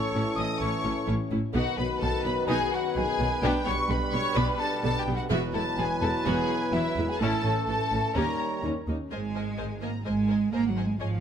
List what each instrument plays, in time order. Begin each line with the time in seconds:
Already playing: trombone section A2 E3, french horn section C#4 E4, trumpet A4, violin section C#5 C#6, flute C#6
0.14 double bass section A1, cello section A2, viola section C#4 E4
0.36 double bass section A1, cello section A2, viola section C#4 E4, violin section D#5 D#6, flute D#6
0.60 double bass section A1, cello section A2, viola section C#4 E4, violin section C#5 C#6, flute C#6
0.84 double bass section A1, cello section A2, viola section C#4 E4
1.06 double bass section A1, cello section A2, viola section C#4 E4
1.31 double bass section A1, cello section A2, viola section C#4 E4
1.53 double bass section B1, trombone section F#2 D#3, cello section B2, viola section B3 D#4, french horn section B3 F#4, violin section F#4 F#5, trumpet B4, flute F#5
1.77 double bass section B1, cello section B2, viola section F#3 B3, violin section B4 B5, flute B5
2.00 double bass section B1, cello section B2, viola section D#3 F#3, violin section A4 A5, flute A5
2.24 double bass section B1, cello section B2, viola section F#3 B3, violin section B4 B5, flute B5
2.47 double bass section B1, cello section B2, viola section B3 D#4, violin section G#4 G#5, flute G#5
2.72 violin section F#4 F#5, flute F#5
2.95 double bass section B1, cello section B2, viola section D#3 F#3, violin section G#4 G#5, flute G#5
3.19 double bass section B1, cello section B2, viola section F#3 B3
3.42 double bass section B1, trombone section B2 G3, cello section B2, viola section B3 D4, french horn section D4, violin section G4 G5, flute G5
3.65 double bass section B1, cello section B2, viola section G3 B3, violin section C#5 C#6, flute C#6
3.89 double bass section B1, cello section B2, viola section D3 G3, violin section B4 B5, flute B5
4.12 double bass section B1, cello section B2, viola section G3 B3, violin section C#5 C#6, flute C#6
4.35 double bass section B1, cello section B2, viola section B3 D4, violin section B4 B5, flute B5
4.59 violin section A4 A5, flute A5
4.83 double bass section B1, cello section B2, viola section D3 G3, violin section A4 A5, flute A5
4.98 violin section G4 G5, flute G5
5.07 double bass section B1, cello section B2, viola section G3 B3
5.15 violin section F#4 F#5, flute F#5
5.30 double bass section E1, cello section E2, trombone section F#3, viola section B3 F#4, french horn section B3 E4, violin section E4 E5, trumpet B4, flute E5
5.53 double bass section E1, cello section E2, viola section G#3 E4, violin section A4 A5, flute A5
5.77 double bass section E1, cello section E2, viola section F#3 B3, violin section G#4 G#5, flute G#5
6.01 double bass section E1, cello section E2, viola section G#3 E4, violin section A4 A5, flute A5
6.25 double bass section E1, cello section E2, viola section B3 F#4, violin section G#4 G#5, flute G#5
6.72 double bass section E1, cello section E2, viola section F#3 B3, violin section E4 E5, flute E5
6.96 double bass section E1, cello section E2, viola section G#3 E4
7.08 violin section G#4 G#5, flute G#5
7.19 double bass section A1, cello section A2, trombone section E3 A3, french horn section C#4, viola section C#4 E4, violin section A4 A5, trumpet A4, flute A5
7.43 double bass section A1, cello section A2, viola section A3 C#4
7.67 double bass section A1, cello section A2, viola section E3 A3, violin section A4 A5, flute A5
7.91 double bass section A1, cello section A2, viola section A3 C#4
8.14 cello section D#2, double bass section D#2, trombone section D#3 G3, french horn section A#3 D#4, viola section C#4 G4, violin section A#4 A#5, trumpet C#5, flute A#5
8.63 cello section D#2, double bass section D#2, viola section G3 C#4, french horn section D#4
8.87 cello section D#2, double bass section D#2, viola section A#3 D#4, french horn section C#4
9.11 double bass section G#1, cello section G#3, viola section A#4 C5, violin section D#5 G#5
9.35 viola section A#4 C5, violin section D#5 G#5
9.57 double bass section G#1, viola section A#4 C5, violin section D#5 G#5
9.81 cello section A#3, viola section A#4 C5, violin section D#5 G#5 A#5
10.05 double bass section G#1, cello section G#3, viola section A#4 C5, violin section D#5 G#5
10.28 viola section A#4 C5, violin section D#5 G#5
10.52 double bass section G#1, cello section A#3, viola section A#4 C5, violin section D#5 G#5 A#5
10.68 cello section F#3, violin section F#5
10.76 viola section A#4 C5, violin section D#5 G#5
10.84 cello section G#3, violin section G#5
10.99 double bass section G#1, cello section F3, viola section G#4 C#5, violin section D#5 F5 G#5